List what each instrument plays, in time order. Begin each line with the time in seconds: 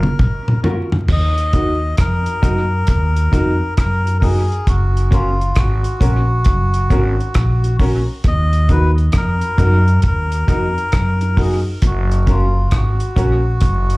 Already playing: melodica A#4
0.03 tonewheel organ F#2 C#3, upright piano F#4 A#4, mid tom
0.19 kick, mid tom
0.48 tonewheel organ F#2 C#3, muted clean electric guitar stroke, mid tom
0.64 tonewheel organ F#3 A#3 F4, clean electric guitar C#4 F4 A#4, upright piano F4 F#4 A#4, floor tom
0.92 tonewheel organ F#2 C#3, floor tom
1.08 upright bass D#2, melodica D#5, kick, crash
1.38 closed hi-hat
1.53 clean electric guitar A#3 D#4 F#4, upright piano D#4 F#4 A#4, kick, closed hi-hat
1.97 upright bass F2, melodica A#4, kick, cross-stick, closed hi-hat
2.26 closed hi-hat
2.42 upright bass F#2, clean electric guitar A#3 D#4 F#4, upright piano D#4 F#4 A#4, kick, closed hi-hat
2.87 upright bass D#2, melodica A#4, kick, closed hi-hat
3.16 closed hi-hat
3.32 upright bass F2, clean electric guitar A#3 D#4 F#4, upright piano D#4 F#4 A#4, kick, closed hi-hat
3.77 upright bass F#2, melodica A#4, kick, cross-stick, closed hi-hat
4.06 muted clean electric guitar stroke, closed hi-hat
4.19 clean electric guitar A#3, upright piano D#4 F#4 A#4, melodica G#4 A#4, kick, open hi-hat
4.24 clean electric guitar D#4 F#4
4.52 closed hi-hat
4.67 upright bass F#1, melodica F#4, kick, closed hi-hat
4.97 closed hi-hat
5.11 clean electric guitar A#3 C#4 F#4, upright piano C#4 F#4 A#4, melodica F4, kick, closed hi-hat
5.41 closed hi-hat
5.55 upright bass G#1, melodica F#4, kick, cross-stick, closed hi-hat
5.84 closed hi-hat
6.00 upright bass A#1, clean electric guitar A#3 C#4 F#4, upright piano C#4 F#4 A#4, kick, closed hi-hat
6.44 upright bass F#1, kick, closed hi-hat
6.74 closed hi-hat
6.90 upright bass G#1, clean electric guitar A#3 C#4 F#4, upright piano C#4 F#4 A#4, kick, closed hi-hat
7.20 closed hi-hat
7.34 upright bass A#1, kick, cross-stick, closed hi-hat
7.64 muted clean electric guitar stroke, closed hi-hat
7.79 clean electric guitar A#3 C#4 F#4, upright piano C#4 F#4 A#4, kick, open hi-hat
8.24 upright bass D#2, melodica D#5, kick, closed hi-hat
8.53 closed hi-hat
8.69 clean electric guitar A#3 D#4 F#4, upright piano D#4 F#4 A#4, melodica B4, kick, closed hi-hat
8.98 closed hi-hat
9.12 upright bass F2, kick, cross-stick, closed hi-hat
9.17 melodica A#4
9.41 closed hi-hat
9.58 upright bass F#2, clean electric guitar A#3 D#4 F#4, upright piano D#4 F#4 A#4, kick, closed hi-hat
9.88 closed hi-hat
10.02 upright bass D#2, kick, closed hi-hat
10.07 melodica A#4
10.32 closed hi-hat
10.47 upright bass F2, clean electric guitar A#3 D#4 F#4, upright piano D#4 F#4 A#4, kick, closed hi-hat
10.78 closed hi-hat
10.92 upright bass F#2, kick, cross-stick, closed hi-hat
11.21 muted clean electric guitar stroke, closed hi-hat
11.37 clean electric guitar A#3 D#4 F#4, upright piano D#4 F#4 A#4, kick, open hi-hat
11.41 melodica G#4
11.82 upright bass F#1, kick, closed hi-hat
11.86 melodica F#4
12.11 closed hi-hat
12.26 clean electric guitar A#3 C#4 F#4, upright piano C#4 F#4 A#4, kick, closed hi-hat
12.31 melodica F4
12.71 upright bass G#1, kick, cross-stick, closed hi-hat
12.76 melodica F#4
13.00 closed hi-hat
13.16 upright bass A#1, clean electric guitar A#3 C#4 F#4, upright piano C#4 F#4 A#4, kick, closed hi-hat
13.61 upright bass F#1, kick, closed hi-hat
13.90 closed hi-hat